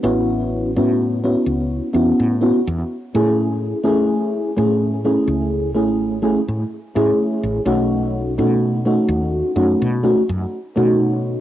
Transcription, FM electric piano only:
X:1
M:4/4
L:1/16
Q:"Swing 16ths" 1/4=63
K:Alyd
V:1 name="FM electric piano"
[B,CEF]3 [B,CEF]2 [B,CEF]3 [B,CEF]2 [B,CEF] z2 [A,CEG]3 | [A,CEG]3 [A,CEG]2 [A,CEG]3 [A,CEG]2 [A,CEG] z2 [A,CEG]3 | [A,CDF]3 [A,CDF]2 [A,CDF]3 [A,CDF]2 [A,CDF] z2 [A,CDF]3 |]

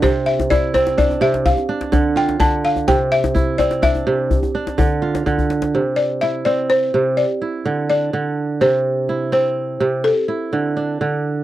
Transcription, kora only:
X:1
M:12/8
L:1/8
Q:3/8=84
K:C
V:1 name="Kora"
z2 E2 D3 D2 F3 | z2 E2 D3 D2 F3 | z2 E3 z2 E2 D3 | z2 E3 z2 E2 D3 |]
V:2 name="Kora" clef=bass
C,2 z C2 C, z2 D,2 D,2 | C,2 z C2 C, z2 D,2 D,2 | C,2 z C2 C, z2 D,2 D,2 | C,2 z C2 C, z2 D,2 D,2 |]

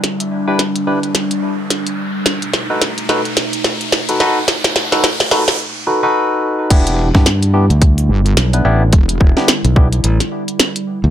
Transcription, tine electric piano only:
X:1
M:4/4
L:1/16
Q:"Swing 16ths" 1/4=108
K:Em
V:1 name="Tine electric piano"
z3 [DEGB] z2 [DEGB] z8 z | z3 [^DFAB] z2 [DFAB] z6 [DFAB] [DFAB] z | z3 [^DFAB] z2 [DFAB] z3 [DFAB] [DFAB]4- [DFAB] | [B,DEG]3 [B,DEG] z2 [B,DEG] z6 [B,DEB] [B,DEG] z |
z3 [B,DEG] z2 [B,DEG] z8 z |]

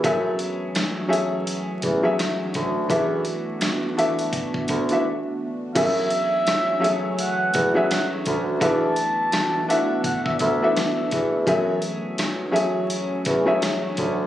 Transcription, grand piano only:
X:1
M:4/4
L:1/16
Q:"Swing 16ths" 1/4=84
K:F#m
V:1 name="Grand piano"
[F,CGAe]6 [F,CGAe]4 z [F,CGAe]4 z | [E,DFAe]6 [E,DFAe]4 z [E,DFAe] z4 | [F,CGAe]6 [F,CGAe]4 z [F,CGAe]4 z | [E,DFAe]6 [E,DFAe]4 z [E,DFAe]4 z |
[F,CGAe]6 [F,CGAe]4 z [F,CGAe]4 z |]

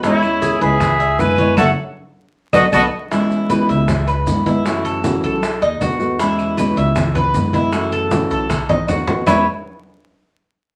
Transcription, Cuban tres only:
X:1
M:4/4
L:1/8
Q:1/4=156
K:E
V:1 name="Cuban tres"
E2 G B2 e2 c | [cef] z4 [ABd] [ABd] z | E2 B e2 B2 E- | E A2 A2 D F2 |
E2 B e2 B2 E- | E A2 A2 D F2 | [EBc] z6 z |]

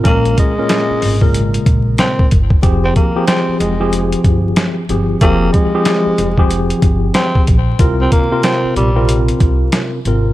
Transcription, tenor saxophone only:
X:1
M:4/4
L:1/16
Q:"Swing 16ths" 1/4=93
K:Fm
V:1 name="Tenor saxophone"
B,2 A,6- A, z3 C2 z2 | z C B,2 C2 A,3 z6 z | B,2 A,6- A, z3 C2 z2 | z C B,2 C2 G,3 z6 z |]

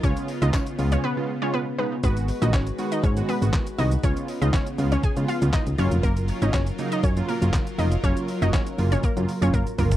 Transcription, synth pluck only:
X:1
M:4/4
L:1/16
Q:1/4=120
K:F#
V:1 name="Synth pluck"
[Cc]2 z [Dd] [Cc] z2 [Cc] [B,B] z2 [Cc] [B,B] z [B,B] z | [B,B]2 z [Dd] [Cc] z2 [Dd] [Cc]2 [B,B] z3 [Dd] z | [Cc]2 z [Dd] [Cc] z2 [Cc] [Gg]2 [Ee] z [Dd] z [Cc] z | [A,A]2 z [Dd] [Cc] z2 [Dd] [Cc]2 [A,A] z3 [Dd] z |
[Cc]2 z [Dd] [Cc] z2 [Cc] [A,A] z2 [Cc] [A,A] z [A,A] z |]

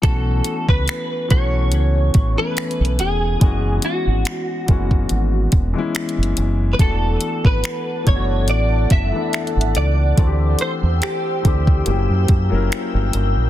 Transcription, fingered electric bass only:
X:1
M:4/4
L:1/16
Q:"Swing 16ths" 1/4=71
K:Bm
V:1 name="Fingered electric bass" clef=bass
B,,,2 z C,, z2 B,,,2 C,,2 A,,, z2 B,,, E,,,2 | F,,,2 z ^G,,, z2 F,,,2 G,,,2 E,,, z2 F,,, F,,,2 | E,,,2 z ^G,,, z2 F,,,2 A,,,2 F,,, z2 G,,, C,,2 | D,,2 z E,, z2 D,,2 F,,, F,, F,, F,,, z G,,, G,,, ^A,,, |]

